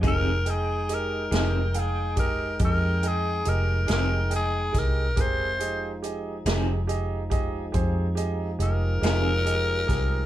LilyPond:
<<
  \new Staff \with { instrumentName = "Tenor saxophone" } { \time 12/8 \key f \minor \tempo 4. = 47 bes'8 aes'8 bes'8 bes'8 aes'8 bes'8 bes'8 aes'8 bes'8 bes'8 aes'8 bes'8 | c''4 r2. bes'2 | }
  \new Staff \with { instrumentName = "Grand piano" } { \time 12/8 \key f \minor <g' aes' ees''>8 <aes' ees'' g''>8 <g' aes' ees''>8 <g' aes' ees''>8 <aes' f'' g''>8 <g' aes' ees''>8 <g' aes' ees''>8 <aes' ees'' g''>8 <g' aes' ees''>8 <g' aes' ees''>8 <aes' ees'' g''>8 <g' aes' ees''>8 | <g' aes' bes'>8 <g' aes' ees''>8 <g' aes' ees''>8 <g' aes' ees''>8 <g' aes' ees''>8 <g' aes' ees''>8 <g' aes' c''>8 <g' aes' ees''>8 <g' aes' ees''>8 <g' aes' ees''>8 <g' aes' ees''>8 <g' aes' bes'>8 | }
  \new Staff \with { instrumentName = "Clean electric guitar" } { \time 12/8 \key f \minor <f c' ees' aes'>8 r4 <f c' ees' aes'>8 r2 r8 <f c' ees' aes'>8 r4 | r4. <f c' ees' aes'>8 r2 r8 <f c' ees' aes'>8 r4 | }
  \new Staff \with { instrumentName = "Tonewheel organ" } { \time 12/8 \key f \minor <aes ees' g''>1. | <aes c' e'>8 <f aes ees'>1~ <f aes ees'>4. | }
  \new Staff \with { instrumentName = "Fingered electric bass" } { \clef bass \time 12/8 \key f \minor f,,4. f,,4. f,4 f,,8 f,,4 c,8 | f,,4. f,,4. f,4 f,,8 f,,4 c,8 | }
  \new DrumStaff \with { instrumentName = "Drums" } \drummode { \time 12/8 <hh bd>8 hh8 hh8 <hh sn>8 hh8 <hh bd>8 <hh bd>8 hh8 hh8 <hh sn>8 hh8 <hh bd sn>8 | <hh bd>8 hh8 hh8 <hh sn>8 hh8 <hh bd>8 <hh bd>8 hh8 hh8 <hh sn>8 hh8 <hh bd sn>8 | }
>>